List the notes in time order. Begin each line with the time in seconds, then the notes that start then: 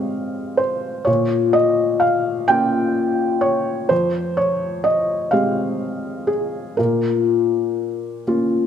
Already playing: F2 G#3 C4 G4 C5 C#5 D#5 F5
0.57 C5
1.05 A#2 C#5
1.53 D#5
2.00 F5
2.48 A#3 C#4 F4 G5
3.41 C#5
3.89 F2 C5
4.37 C#5
4.84 D#5
5.31 G#3 C4 G4 F5
6.27 G#4
6.77 A#2 A#4
8.27 A#3 C#4 F4